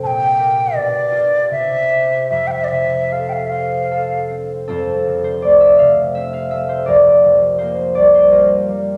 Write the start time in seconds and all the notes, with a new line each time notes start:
0.03 A#2 G5 A5
0.40 G4 A#4
0.76 B2 D5
1.12 F4 G4
1.50 C3 E5
1.90 G4 C5
2.30 F2 E5
2.47 G5
2.51 E5
2.64 D5
2.68 C3 E5
3.12 A4 F5
3.29 F5 G5
3.46 E5 F5
3.52 C5
3.91 A4
4.30 C4
4.68 F2 C4 F4 A4
5.07 C3
5.24 C5
5.42 A3 D5
5.60 E5
5.79 C3 F5
6.15 C4 E5
6.33 F5
6.51 A3 E5
6.69 C5
6.86 F2 G4 A#4 D5
7.24 F3
7.58 A#3 C5
7.95 G3 D5
8.14 C5
8.31 A#3 F4 G4 A#4
8.69 G3